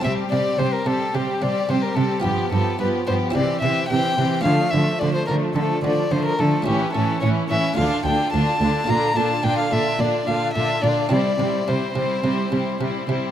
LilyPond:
<<
  \new Staff \with { instrumentName = "Violin" } { \time 4/4 \key c \mixolydian \tempo 4 = 108 e''8 d''8 c''16 bes'16 a'8 g'8 d''8 c''16 bes'16 a'8 | g'8 a'8 b'8 c''8 d''8 e''8 g''4 | f''8 e''8 d''16 c''16 bes'8 a'8 d''8 c''16 bes'16 a'8 | g'8 a'8 cis''8 e''8 f''8 g''8 a''4 |
bes''8 a''8 g''16 f''16 e''8 d''8 f''8 e''8 d''8 | d''4 c''2~ c''8 r8 | }
  \new Staff \with { instrumentName = "Violin section" } { \time 4/4 \key c \mixolydian g'8 g'8 g'8 g'8 g'8 g'8 g'8 g'8 | g'8 g'8 g'8 g'8 g'8 g'8 g'8 g'8 | d'8 d'8 d'8 d'8 d'8 d'8 d'8 d'8 | e'8 e'8 e'8 e'8 f'8 f'8 f'8 f'8 |
f'8 f'8 f'8 f'8 f'8 f'8 f'8 f'8 | e'8 e'8 e'8 e'8 e'8 e'8 e'8 e'8 | }
  \new Staff \with { instrumentName = "Violin section" } { \time 4/4 \key c \mixolydian c'8 c'8 c'8 c'8 c'8 c'8 c'8 c'8 | b8 b8 b8 b8 c'8 c'8 c'8 c'8 | a8 a8 a8 a8 a8 a8 a8 a8 | cis'8 cis'8 cis'8 cis'8 d'8 d'8 d'8 d'8 |
d'8 d'8 d'8 d'8 d'8 d'8 d'8 d'8 | c'8 c'8 c'8 c'8 c'8 c'8 c'8 c'8 | }
  \new Staff \with { instrumentName = "Viola section" } { \clef bass \time 4/4 \key c \mixolydian g8 g8 g8 g8 g8 g8 g8 g8 | f8 f8 f8 f8 e8 e8 e8 e8 | f8 f8 f8 f8 f8 f8 f8 f8 | e8 e8 e8 e8 d8 d8 d8 d8 |
d8 d8 d8 d8 d8 d8 d8 d8 | g8 g8 g8 g8 g8 g8 g8 g8 | }
  \new Staff \with { instrumentName = "Cello section" } { \clef bass \time 4/4 \key c \mixolydian c8 c8 c8 c8 c8 c8 c8 c8 | g,8 g,8 g,8 g,8 c8 c8 c8 c8 | d8 d8 d8 d8 d8 d8 d8 d8 | a,8 a,8 a,8 a,8 d,8 d,8 d,8 d,8 |
bes,8 bes,8 bes,8 bes,8 bes,8 bes,8 bes,8 bes,8 | c8 c8 c8 c8 c8 c8 c8 c8 | }
  \new Staff \with { instrumentName = "Harpsichord" } { \time 4/4 \key c \mixolydian <c' g'>1 | <b f' g'>2 <c' e' g'>2 | <a d'>1 | <a cis' e'>2 <a d' f'>2 |
<bes d' f'>1 | <c' e'>1 | }
  \new Staff \with { instrumentName = "Harpsichord" } { \clef bass \time 4/4 \key c \mixolydian c8 c8 c8 c8 c8 c8 c8 c8 | g,8 g,8 g,8 g,8 c8 c8 c8 c8 | d8 d8 d8 d8 d8 d8 d8 d8 | a,8 a,8 a,8 a,8 d,8 d,8 d,8 d,8 |
bes,8 bes,8 bes,8 bes,8 bes,8 bes,8 bes,8 bes,8 | c8 c8 c8 c8 c8 c8 c8 c8 | }
>>